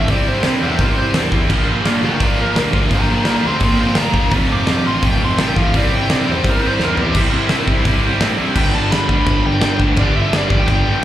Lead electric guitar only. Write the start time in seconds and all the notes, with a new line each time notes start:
0.10 D5
0.28 C5
0.62 E5 G5
0.80 A#4 D5
0.98 C5
2.05 A#4 G5
2.24 A#4 D5
2.42 A#4
2.94 G5 A#5
3.11 G5 A#5
3.29 G5 A#5
3.46 G5 C6
3.63 G5 C6
3.81 G5 C6
3.98 A#5
4.52 D6
4.87 C6
5.04 G5
5.24 C6
5.40 G5
5.56 F5
5.77 D5
5.96 G5
6.13 D5
6.31 C5
6.50 A#4
6.67 C5
6.84 A#4
7.01 G4
8.57 G5
8.74 A5
8.91 B5
9.26 B5
9.46 G5
9.99 D5
10.16 E5
10.34 D5
10.59 G5
10.68 G5